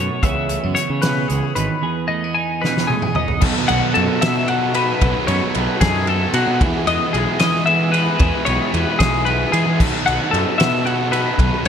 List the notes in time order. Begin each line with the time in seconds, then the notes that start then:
Already playing: A3 D#4 F#4 C#5
0.00 B2
0.23 C#2 C#3 E3 B3 C#4 E4 E5, kick, closed hi-hat
0.49 A3, closed hi-hat
0.64 F#2 B3
0.75 C#4 C#5, closed hi-hat
0.90 C#3
1.01 B2 B4, snare, closed hi-hat
1.28 C#2 C#3 G#4, closed hi-hat
1.55 G#1 D#3 B4, closed hi-hat
1.82 E2 G#4
2.08 A3 D#5
2.24 B3
2.35 D#4 G#5
2.62 B2 B4, snare
2.77 snare
2.87 A3 G#4, high tom
3.02 B3, mid tom
3.15 D#4 D#5, mid tom
3.28 floor tom
3.41 B1 B2 D#3 F#3 B3 D#4 A4, kick, crash
3.68 B1 F#3 B3 D#4 A4 F#5, ride
3.94 F#2 F#3 B3 D#4 A4, ride
4.21 B2 F#3 B3 D#4 A4 E5, snare, ride
4.47 F#3 B3 D#4 A4 F#5, ride
4.74 F#3 B3 D#4 A4 B4, ride
5.01 B1 B2 D#3 F#3 B3 D#4 A4, kick, ride
5.27 F#2 F#3 B3 D#4 A4 C#5, ride
5.54 B1 F#3 B3 D#4 A4 B4, ride
5.81 F#2 F#3 B3 D#4 G#4 A4, kick, snare, ride
6.07 F#3 B3 D#4 A4, ride
6.34 B2 B3 D#4 F#4 A4, ride
6.38 F#3
6.47 B2
6.60 E2 E3 G#3 B3 E4 G#4, kick, ride
6.87 E2 B3 E4 G#4 D#5, ride
7.13 B1 G#3 B3 E4 G#4, ride
7.39 E3 B3 E4 G#4 D#5, snare, ride
7.66 G#3 B3 E4 G#4 E5, ride
7.92 B3 E4 G#4 B4, ride
8.19 E2 E3 G#3 B3 E4 G#4, kick, ride
8.45 B1 B3 E4 G#4 C#5, ride
8.72 E2 G#3 B3 E4 G#4 B4, ride
8.99 B1 B3 E4 G#4, kick, snare, ride
9.25 G#3 B3 E4 G#4 B4, ride
9.52 E3 B3 E4 G#4, ride
9.67 E3
9.80 B1 B2 D#3 F#3 B3 D#4 A4, kick, crash
10.06 B1 F#3 B3 D#4 A4 F#5, ride
10.31 F#2 F#3 B3 D#4 A4, ride
10.58 B2 B3 D#4 A4 E5, snare, ride
10.63 F#3
10.85 F#3 B3 D#4 A4 F#5, ride
11.12 F#3 B3 D#4 A4 B4, ride
11.37 B1 B2 D#3 F#3 B3 D#4 A4, kick, ride
11.64 A4